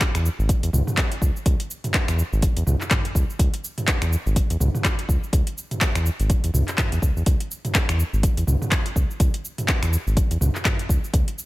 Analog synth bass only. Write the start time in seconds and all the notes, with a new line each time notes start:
0.15 E2
0.39 G#1
0.63 E2
0.73 C#2
1.22 C#2
1.46 C#2
2.08 E2
2.32 G#1
2.57 E2
2.67 C#2
3.15 C#2
3.39 C#2
4.02 E2
4.26 G#1
4.50 E2
4.60 C#2
5.09 C#2
5.33 C#2
5.95 E2
6.20 G#1
6.44 E2
6.54 C#2
6.92 E2
7.02 C#2
7.16 E2
7.26 C#2
7.89 E2
8.13 G#1
8.37 E2
8.47 C#2
8.96 C#2
9.20 C#2
9.82 E2
10.07 G#1
10.31 E2
10.41 C#2
10.89 C#2
11.14 C#2